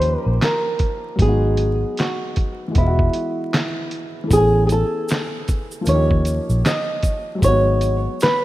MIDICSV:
0, 0, Header, 1, 5, 480
1, 0, Start_track
1, 0, Tempo, 779221
1, 734, Time_signature, 4, 2, 24, 8
1, 5203, End_track
2, 0, Start_track
2, 0, Title_t, "Nylon-string guitar"
2, 0, Program_c, 0, 24
2, 0, Note_on_c, 0, 72, 107
2, 118, Note_off_c, 0, 72, 0
2, 118, Note_on_c, 0, 70, 107
2, 238, Note_off_c, 0, 70, 0
2, 271, Note_on_c, 0, 70, 89
2, 749, Note_off_c, 0, 70, 0
2, 751, Note_on_c, 0, 68, 93
2, 1235, Note_on_c, 0, 66, 82
2, 1236, Note_off_c, 0, 68, 0
2, 1710, Note_off_c, 0, 66, 0
2, 1712, Note_on_c, 0, 64, 78
2, 2398, Note_off_c, 0, 64, 0
2, 2668, Note_on_c, 0, 68, 84
2, 2854, Note_off_c, 0, 68, 0
2, 2877, Note_on_c, 0, 68, 63
2, 2901, Note_off_c, 0, 68, 0
2, 2909, Note_on_c, 0, 69, 85
2, 3597, Note_off_c, 0, 69, 0
2, 3627, Note_on_c, 0, 73, 99
2, 4076, Note_off_c, 0, 73, 0
2, 4107, Note_on_c, 0, 75, 84
2, 4582, Note_off_c, 0, 75, 0
2, 4585, Note_on_c, 0, 73, 96
2, 5066, Note_off_c, 0, 73, 0
2, 5069, Note_on_c, 0, 71, 90
2, 5203, Note_off_c, 0, 71, 0
2, 5203, End_track
3, 0, Start_track
3, 0, Title_t, "Upright piano"
3, 0, Program_c, 1, 0
3, 0, Control_c, 1, 64, 127
3, 0, Note_on_c, 1, 53, 62
3, 0, Note_on_c, 1, 58, 54
3, 0, Note_on_c, 1, 61, 59
3, 0, Note_on_c, 1, 63, 61
3, 0, Note_on_c, 1, 67, 75
3, 697, Note_off_c, 1, 53, 0
3, 707, Note_off_c, 1, 58, 0
3, 712, Note_on_c, 1, 54, 60
3, 718, Note_off_c, 1, 61, 0
3, 728, Note_off_c, 1, 63, 0
3, 732, Note_on_c, 1, 56, 59
3, 739, Note_off_c, 1, 67, 0
3, 741, Control_c, 1, 64, 0
3, 753, Note_on_c, 1, 59, 57
3, 773, Note_on_c, 1, 63, 57
3, 794, Note_on_c, 1, 66, 68
3, 851, Control_c, 1, 64, 127
3, 1649, Note_on_c, 1, 52, 58
3, 1660, Note_off_c, 1, 56, 0
3, 1663, Note_off_c, 1, 54, 0
3, 1669, Note_on_c, 1, 56, 55
3, 1681, Note_off_c, 1, 59, 0
3, 1690, Note_on_c, 1, 59, 58
3, 1694, Note_off_c, 1, 63, 0
3, 1701, Control_c, 1, 64, 0
3, 1705, Note_off_c, 1, 66, 0
3, 1710, Note_on_c, 1, 75, 58
3, 1729, Note_on_c, 1, 65, 53
3, 1761, Note_off_c, 1, 65, 0
3, 1770, Note_on_c, 1, 66, 75
3, 1797, Control_c, 1, 64, 127
3, 2600, Note_off_c, 1, 52, 0
3, 2609, Note_on_c, 1, 52, 65
3, 2622, Note_off_c, 1, 56, 0
3, 2630, Note_on_c, 1, 57, 59
3, 2632, Note_off_c, 1, 59, 0
3, 2643, Note_off_c, 1, 75, 0
3, 2651, Note_on_c, 1, 59, 53
3, 2661, Control_c, 1, 64, 0
3, 2671, Note_on_c, 1, 61, 51
3, 2673, Note_off_c, 1, 66, 0
3, 2692, Note_on_c, 1, 80, 67
3, 2764, Control_c, 1, 64, 127
3, 3572, Note_off_c, 1, 52, 0
3, 3579, Note_on_c, 1, 53, 61
3, 3582, Note_off_c, 1, 57, 0
3, 3593, Note_off_c, 1, 59, 0
3, 3600, Note_on_c, 1, 58, 62
3, 3603, Note_off_c, 1, 61, 0
3, 3614, Note_off_c, 1, 80, 0
3, 3620, Note_on_c, 1, 61, 58
3, 3622, Control_c, 1, 64, 0
3, 3640, Note_on_c, 1, 63, 59
3, 3660, Note_on_c, 1, 67, 64
3, 3725, Control_c, 1, 64, 127
3, 4527, Note_on_c, 1, 54, 63
3, 4537, Note_off_c, 1, 53, 0
3, 4547, Note_off_c, 1, 58, 0
3, 4548, Note_on_c, 1, 56, 52
3, 4557, Note_off_c, 1, 61, 0
3, 4568, Note_off_c, 1, 63, 0
3, 4568, Note_on_c, 1, 58, 44
3, 4578, Note_off_c, 1, 67, 0
3, 4582, Control_c, 1, 64, 0
3, 4589, Note_on_c, 1, 63, 54
3, 4608, Note_on_c, 1, 59, 57
3, 4608, Note_on_c, 1, 66, 67
3, 4620, Note_off_c, 1, 58, 0
3, 4691, Control_c, 1, 64, 127
3, 5203, Note_off_c, 1, 54, 0
3, 5203, Note_off_c, 1, 56, 0
3, 5203, Note_off_c, 1, 59, 0
3, 5203, Note_off_c, 1, 63, 0
3, 5203, Note_off_c, 1, 66, 0
3, 5203, End_track
4, 0, Start_track
4, 0, Title_t, "Fingered electric bass"
4, 0, Program_c, 2, 33
4, 0, Note_on_c, 2, 39, 92
4, 94, Note_off_c, 2, 39, 0
4, 162, Note_on_c, 2, 34, 81
4, 237, Note_off_c, 2, 34, 0
4, 732, Note_on_c, 2, 32, 102
4, 1127, Note_off_c, 2, 32, 0
4, 1698, Note_on_c, 2, 28, 84
4, 1893, Note_off_c, 2, 28, 0
4, 2652, Note_on_c, 2, 33, 103
4, 2972, Note_off_c, 2, 33, 0
4, 3616, Note_on_c, 2, 39, 89
4, 3934, Note_off_c, 2, 39, 0
4, 4001, Note_on_c, 2, 34, 82
4, 4077, Note_off_c, 2, 34, 0
4, 4572, Note_on_c, 2, 32, 98
4, 4968, Note_off_c, 2, 32, 0
4, 5203, End_track
5, 0, Start_track
5, 0, Title_t, "Drums"
5, 10, Note_on_c, 9, 42, 66
5, 71, Note_off_c, 9, 42, 0
5, 259, Note_on_c, 9, 39, 82
5, 260, Note_on_c, 9, 38, 101
5, 261, Note_on_c, 9, 42, 73
5, 321, Note_off_c, 9, 39, 0
5, 322, Note_off_c, 9, 38, 0
5, 322, Note_off_c, 9, 42, 0
5, 487, Note_on_c, 9, 42, 69
5, 492, Note_on_c, 9, 36, 95
5, 549, Note_off_c, 9, 42, 0
5, 553, Note_off_c, 9, 36, 0
5, 732, Note_on_c, 9, 36, 100
5, 735, Note_on_c, 9, 42, 81
5, 793, Note_off_c, 9, 36, 0
5, 796, Note_off_c, 9, 42, 0
5, 969, Note_on_c, 9, 42, 56
5, 1031, Note_off_c, 9, 42, 0
5, 1216, Note_on_c, 9, 42, 72
5, 1229, Note_on_c, 9, 39, 83
5, 1231, Note_on_c, 9, 38, 95
5, 1277, Note_off_c, 9, 42, 0
5, 1291, Note_off_c, 9, 39, 0
5, 1292, Note_off_c, 9, 38, 0
5, 1454, Note_on_c, 9, 42, 52
5, 1460, Note_on_c, 9, 36, 93
5, 1515, Note_off_c, 9, 42, 0
5, 1521, Note_off_c, 9, 36, 0
5, 1694, Note_on_c, 9, 42, 79
5, 1697, Note_on_c, 9, 36, 94
5, 1755, Note_off_c, 9, 42, 0
5, 1758, Note_off_c, 9, 36, 0
5, 1842, Note_on_c, 9, 36, 97
5, 1903, Note_off_c, 9, 36, 0
5, 1931, Note_on_c, 9, 42, 70
5, 1993, Note_off_c, 9, 42, 0
5, 2180, Note_on_c, 9, 39, 83
5, 2181, Note_on_c, 9, 38, 102
5, 2182, Note_on_c, 9, 42, 75
5, 2242, Note_off_c, 9, 39, 0
5, 2243, Note_off_c, 9, 38, 0
5, 2243, Note_off_c, 9, 42, 0
5, 2409, Note_on_c, 9, 42, 66
5, 2471, Note_off_c, 9, 42, 0
5, 2652, Note_on_c, 9, 36, 94
5, 2654, Note_on_c, 9, 82, 65
5, 2657, Note_on_c, 9, 42, 84
5, 2714, Note_off_c, 9, 36, 0
5, 2716, Note_off_c, 9, 82, 0
5, 2719, Note_off_c, 9, 42, 0
5, 2890, Note_on_c, 9, 42, 57
5, 2894, Note_on_c, 9, 82, 44
5, 2951, Note_off_c, 9, 42, 0
5, 2955, Note_off_c, 9, 82, 0
5, 3132, Note_on_c, 9, 82, 62
5, 3137, Note_on_c, 9, 42, 70
5, 3150, Note_on_c, 9, 39, 82
5, 3151, Note_on_c, 9, 38, 104
5, 3194, Note_off_c, 9, 82, 0
5, 3198, Note_off_c, 9, 42, 0
5, 3212, Note_off_c, 9, 39, 0
5, 3213, Note_off_c, 9, 38, 0
5, 3374, Note_on_c, 9, 42, 50
5, 3377, Note_on_c, 9, 82, 47
5, 3380, Note_on_c, 9, 36, 90
5, 3436, Note_off_c, 9, 42, 0
5, 3439, Note_off_c, 9, 82, 0
5, 3442, Note_off_c, 9, 36, 0
5, 3519, Note_on_c, 9, 82, 48
5, 3581, Note_off_c, 9, 82, 0
5, 3608, Note_on_c, 9, 82, 75
5, 3614, Note_on_c, 9, 42, 84
5, 3669, Note_off_c, 9, 82, 0
5, 3676, Note_off_c, 9, 42, 0
5, 3762, Note_on_c, 9, 36, 91
5, 3823, Note_off_c, 9, 36, 0
5, 3850, Note_on_c, 9, 42, 67
5, 3859, Note_on_c, 9, 82, 57
5, 3911, Note_off_c, 9, 42, 0
5, 3921, Note_off_c, 9, 82, 0
5, 4002, Note_on_c, 9, 82, 41
5, 4063, Note_off_c, 9, 82, 0
5, 4100, Note_on_c, 9, 39, 83
5, 4100, Note_on_c, 9, 82, 62
5, 4102, Note_on_c, 9, 38, 107
5, 4102, Note_on_c, 9, 42, 73
5, 4161, Note_off_c, 9, 82, 0
5, 4162, Note_off_c, 9, 39, 0
5, 4163, Note_off_c, 9, 38, 0
5, 4163, Note_off_c, 9, 42, 0
5, 4328, Note_on_c, 9, 42, 68
5, 4332, Note_on_c, 9, 36, 96
5, 4335, Note_on_c, 9, 82, 41
5, 4389, Note_off_c, 9, 42, 0
5, 4393, Note_off_c, 9, 36, 0
5, 4396, Note_off_c, 9, 82, 0
5, 4572, Note_on_c, 9, 36, 94
5, 4575, Note_on_c, 9, 82, 69
5, 4576, Note_on_c, 9, 42, 83
5, 4634, Note_off_c, 9, 36, 0
5, 4637, Note_off_c, 9, 42, 0
5, 4637, Note_off_c, 9, 82, 0
5, 4811, Note_on_c, 9, 42, 58
5, 4816, Note_on_c, 9, 82, 44
5, 4872, Note_off_c, 9, 42, 0
5, 4878, Note_off_c, 9, 82, 0
5, 5054, Note_on_c, 9, 82, 62
5, 5056, Note_on_c, 9, 42, 69
5, 5070, Note_on_c, 9, 39, 83
5, 5071, Note_on_c, 9, 38, 107
5, 5115, Note_off_c, 9, 82, 0
5, 5118, Note_off_c, 9, 42, 0
5, 5132, Note_off_c, 9, 39, 0
5, 5133, Note_off_c, 9, 38, 0
5, 5203, End_track
0, 0, End_of_file